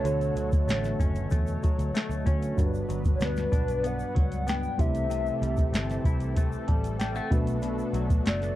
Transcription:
Already playing: B2 F#3 A3 D4 F#4 A4 C#5
0.03 D2 D3 A3 D4 F#4 C#5, closed hi-hat, shaker
0.21 closed hi-hat, shaker
0.36 D2 F#3, closed hi-hat, shaker
0.52 kick, closed hi-hat, shaker
0.67 A1 A3, snare, closed hi-hat, shaker
0.84 snare, closed hi-hat, shaker
0.99 F#1 C#4, kick, closed hi-hat, shaker
1.15 closed hi-hat, shaker
1.30 E2 A3, kick, closed hi-hat, shaker
1.47 closed hi-hat, shaker
1.63 F#3, muted picked electric bass stroke, kick, closed hi-hat, shaker
1.79 D2, closed hi-hat, shaker
1.93 A3, muted picked electric bass stroke, snare, closed hi-hat, shaker
2.09 D2, closed hi-hat, shaker
2.25 D3 A3 C#4 D4 F#4 C#5, kick, closed hi-hat, shaker
2.42 closed hi-hat, shaker
2.56 G1 G2 G3 B3 D4 F#4 A#4 B4, kick, closed hi-hat, shaker
2.66 B4
2.74 shaker
2.89 G1 F#3, closed hi-hat, shaker
3.04 kick, closed hi-hat, shaker
3.15 C#5
3.20 D2 B3 B4, snare, closed hi-hat, shaker
3.36 snare, closed hi-hat, shaker
3.52 B1 D4, kick, closed hi-hat, shaker
3.68 closed hi-hat, shaker
3.84 B3 F#5, closed hi-hat, shaker
3.99 shaker
4.15 C#2 F#3, kick, closed hi-hat
4.32 closed hi-hat, shaker
4.47 B3 G5, snare, closed hi-hat, shaker
4.63 shaker
4.78 C2 C3 E3 A3 C4 E4 G4 A4 C5 E5, kick, closed hi-hat, shaker
4.95 closed hi-hat, shaker
5.10 C3, closed hi-hat, shaker
5.26 shaker
5.42 C2 G3, closed hi-hat, shaker
5.57 kick, closed hi-hat, shaker
5.72 G1 A3, snare, closed hi-hat, shaker
5.90 snare, closed hi-hat, shaker
6.04 C2 E4, kick, closed hi-hat, shaker
6.20 closed hi-hat, shaker
6.36 A3, kick, closed hi-hat, shaker
6.52 shaker
6.68 A1 G3 A5, kick, closed hi-hat
6.84 closed hi-hat, shaker
6.99 G3 G5, snare, closed hi-hat, shaker
7.15 A3 F#5, shaker
7.30 B1 B2 A3 B3 D4 F#4 B4 E5, kick, closed hi-hat, shaker
7.47 closed hi-hat, shaker
7.62 B2, closed hi-hat, shaker
7.79 shaker
7.93 B1 F#3, closed hi-hat, shaker
8.10 kick, closed hi-hat, shaker
8.25 F#1 A3 D5, snare, closed hi-hat, shaker
8.42 snare, closed hi-hat, shaker

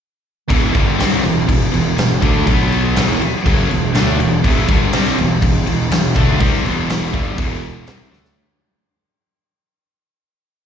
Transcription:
0.49 E1 E2 B2 E3, kick, crash
0.74 G1 G2 D3 G3, kick, crash
0.98 C2 C3 G3 C4, snare, crash
1.23 E1 E2 B2, crash
1.48 E1 E2 B2, kick, crash
1.72 E1 E2 B2, crash
1.96 E1 E2 B2, snare, crash
2.22 D2 D3 A3 D4, kick, crash
2.47 B1 B2 F#3 B3, kick, crash
2.72 crash
2.96 E1 E2 B2 E3, snare, crash
3.21 muted distorted electric guitar stroke, muted fingered electric bass stroke, crash
3.45 F#1 F#2 C#3 F#3, kick, crash
3.70 E1 E2 B2, crash
3.95 D2 D3 A3 D4, snare, crash
4.20 E1 E2 B2, crash
4.44 E1 E2 B2 E3, kick, crash
4.68 G1 G2 D3 G3, kick, crash
4.92 C2 C3 G3 C4, snare, crash
5.18 E1 E2 B2, crash
5.42 E1 E2 B2, kick, crash
5.66 E1 E2 B2, crash
5.91 E1 E2 B2, snare, crash
6.16 D2 D3 A3 D4, kick, crash
6.39 C2 C3 G3 C4, kick, crash
6.63 E1 E2 B2 E3, crash
6.90 snare, crash
7.13 G1 G2 D3 G3, kick, crash
7.38 E1 E2 B2 E3, kick, crash
7.63 crash
7.87 C2 C3 G3 C4, snare, crash
8.10 D2 D3 A3 D4, snare
8.25 snare

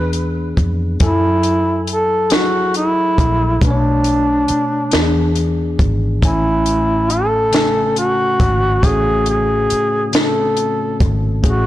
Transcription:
Already playing: E2 E3 B3 D4 G#4 B4
0.13 closed hi-hat
0.57 F2, kick, closed hi-hat
1.00 F#2 F#3 E4 A4 G#5, kick, closed hi-hat
1.43 closed hi-hat
1.87 A4, closed hi-hat
2.30 F#3 E4 F#4 G#4 A4, snare, closed hi-hat
2.74 E4, closed hi-hat
3.18 A#1, kick, closed hi-hat
3.61 B1 B2 A3 D4 B4, kick, closed hi-hat
3.71 C#5
4.04 closed hi-hat
4.48 muted fingered electric bass stroke, closed hi-hat
4.91 E2 E3 B3 D4 F#4, snare, closed hi-hat
5.01 G#4
5.36 closed hi-hat
5.79 G#1, kick, closed hi-hat
6.22 A1 A2 A3 C#4 E4 G#5, kick, closed hi-hat
6.66 closed hi-hat
7.10 A4, closed hi-hat
7.52 C#3 A3 C#4 G#5, snare, closed hi-hat
7.96 F#4, closed hi-hat
8.40 G#1, kick, closed hi-hat
8.83 A1 A2 A3 C#4 F#4 G#4, kick, closed hi-hat
9.26 G#4, closed hi-hat
9.70 muted fingered electric bass stroke, closed hi-hat
10.12 C#3 A3 C4 A4, snare, closed hi-hat
10.16 A4
10.21 C#4
10.57 closed hi-hat
11.00 G#1, kick, closed hi-hat
11.42 A1 A2 A3 C#4 G#4, kick, closed hi-hat
11.46 F#4

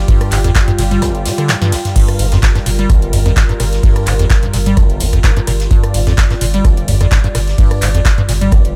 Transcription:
Already playing: G3 F4 G4
0.08 G2, kick, closed hi-hat, open hi-hat
0.21 cross-stick, closed hi-hat
0.31 G1 G#2, clap, closed hi-hat, open hi-hat, ride
0.44 F2, closed hi-hat, mid tom
0.55 G2, kick, cross-stick, snare, clap, closed hi-hat
0.68 G2, closed hi-hat, mid tom
0.79 G1 A#2, snare, closed hi-hat, open hi-hat, ride
0.91 G3, closed hi-hat, mid tom
1.02 G1, cross-stick, snare, closed hi-hat
1.15 closed hi-hat
1.25 C3, snare, closed hi-hat, open hi-hat, ride
1.38 D3, cross-stick, closed hi-hat
1.49 G2, snare, clap, closed hi-hat
1.61 G2, snare, closed hi-hat
1.72 G1, snare, closed hi-hat, open hi-hat, ride
1.85 snare, closed hi-hat, mid tom
1.96 G2 A#4, kick, closed hi-hat, crash
2.08 cross-stick, closed hi-hat
2.19 G1 G#2, closed hi-hat, open hi-hat, ride
2.32 F2, snare, closed hi-hat, mid tom
2.42 G2, kick, cross-stick, snare, clap, closed hi-hat
2.55 G2, snare, closed hi-hat
2.66 G1 A#2, closed hi-hat, open hi-hat, ride
2.79 G3, closed hi-hat
2.90 G1, kick, cross-stick, closed hi-hat
3.02 F1, closed hi-hat
3.13 G1 G#2, closed hi-hat, mid tom, open hi-hat, ride
3.26 F2, cross-stick, closed hi-hat
3.36 G#2, kick, snare, clap, closed hi-hat
3.49 G2, closed hi-hat
3.60 G1 A#2, cross-stick, closed hi-hat, open hi-hat, ride
3.73 snare, closed hi-hat
3.83 G2, kick, closed hi-hat, open hi-hat
3.96 cross-stick, closed hi-hat
4.06 G1 G#2, clap, closed hi-hat, open hi-hat, ride
4.19 F2, closed hi-hat
4.30 G2, kick, cross-stick, snare, clap, closed hi-hat
4.43 G2, closed hi-hat, mid tom
4.53 G1 A#2, snare, closed hi-hat, open hi-hat, ride
4.66 G3, closed hi-hat, mid tom
4.77 G1, kick, cross-stick, closed hi-hat
4.90 F1, closed hi-hat
5.00 G1 G#2, closed hi-hat, open hi-hat, ride
5.13 F2, kick, cross-stick, closed hi-hat
5.24 G#2, kick, snare, clap, closed hi-hat
5.37 G2, closed hi-hat
5.47 G1 A#2, cross-stick, closed hi-hat, open hi-hat, ride
5.60 snare, closed hi-hat
5.71 G2 D5, kick, closed hi-hat
5.83 cross-stick, closed hi-hat
5.94 G1 G#2, closed hi-hat, open hi-hat, ride
6.07 F2, snare, closed hi-hat, mid tom
6.17 G2, kick, cross-stick, snare, clap, closed hi-hat
6.30 G2, snare, closed hi-hat
6.41 G1 A#2, closed hi-hat, open hi-hat, ride
6.54 G3, closed hi-hat
6.64 G1, kick, cross-stick, closed hi-hat
6.77 F1, closed hi-hat
6.88 G1 G#2, closed hi-hat, mid tom, open hi-hat, ride
7.01 F2, cross-stick, closed hi-hat
7.11 G#2, kick, snare, clap, closed hi-hat
7.24 G2, closed hi-hat
7.35 G1 A#2, cross-stick, closed hi-hat, open hi-hat, ride
7.47 snare, closed hi-hat
7.58 G2, kick, closed hi-hat, open hi-hat
7.71 cross-stick, closed hi-hat
7.82 G1 G#2, clap, closed hi-hat, open hi-hat, ride
7.94 F2, closed hi-hat
8.05 G2, kick, cross-stick, snare, clap, closed hi-hat
8.18 G2, closed hi-hat, mid tom
8.29 G1 A#2, snare, closed hi-hat, open hi-hat, ride
8.41 G3, closed hi-hat, mid tom
8.52 G1, kick, cross-stick, closed hi-hat
8.65 F1, closed hi-hat

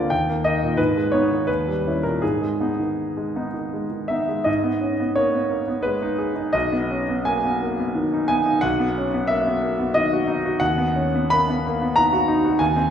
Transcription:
Already playing: D2 D3 A#3 F4 D5 G5 G#5
0.10 D#2 G5
0.29 A#3
0.44 A#3 D#4 D#5
0.63 A#2
0.77 G#2 B4
0.97 G#3
1.12 B3 D#4 C#5
1.31 D#3
1.47 D#2 B4
1.68 G3
1.86 C#4 E4
2.03 A#2 A#4
2.22 G#2 G#4
2.41 G#3
2.60 B3 D#4
2.79 D#3
3.17 G#3
3.36 B3 D#4
3.54 D#3
3.73 G#3
3.91 D#3
4.08 B3 D#4 E5
4.29 G#3
4.44 G#2 D#5
4.64 B3
4.81 C#4
5.00 B3
5.16 A#3 C#5
5.34 B3
5.50 A#3
5.68 B3
5.83 G#3 B4
6.02 D#4
6.18 G#4
6.36 D#4
6.53 B1 D#5
6.72 B3
6.91 C#4
7.09 B3
7.25 A#3 G#5
7.45 B3
7.62 A#3
7.80 B3
7.95 D#3
8.14 D#4
8.28 B3 G#5
8.45 D#4
8.61 B1 F#5
8.80 B3
8.98 C#4
9.14 B3
9.27 A#3 E5
9.47 B3
9.63 A#3
9.79 B3
9.94 D#3 D#5
10.13 F#4
10.28 D#4
10.45 F#4
10.60 D#2 F#5
10.78 B3
10.96 C#4
11.15 B3
11.30 A#3 B5
11.50 B3
11.67 A#3
11.82 B3
11.96 D#3 A#5
12.13 F#4
12.28 D#4
12.45 F#4
12.59 D#2 G#5
12.76 C4

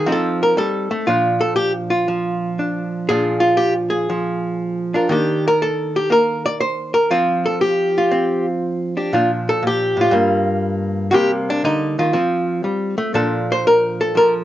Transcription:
0.06 F3 C4 D#4
0.12 A4
0.43 A#4
0.57 G3 A4
0.91 A3
1.07 A#2 F3 D4 F4
1.41 A4
1.56 G4
1.90 F4
2.08 F3
2.59 D4
3.09 A#2 F3 D4 F4 G#4
3.40 F4
3.57 G4
3.90 G#4
4.10 F3
4.94 D4 F4 A#4
5.09 D#3 A#3 D4 G4
5.48 A#4
5.62 A4
5.96 G4
6.10 A#3 A#4
6.46 D5
6.60 C5
6.94 A#4
7.11 F3 C4 F4
7.46 A4
7.61 G4
7.98 F4
8.11 C4
8.97 D4 G4
9.13 A#2 F3 D4 F4
9.49 A4
9.63 A#2
9.67 G4
9.97 A2
10.01 F4
10.11 G2 G3 A#3
11.11 C3 G3 A#3 F#4 G4
11.50 D4
11.64 D3 D#4
11.99 D#3 F4
12.13 F3 C4
12.64 G3
12.98 A3
13.14 A#2 F3 D4 A4
13.52 C5
13.67 A#4
14.01 A4
14.15 F3 A#4

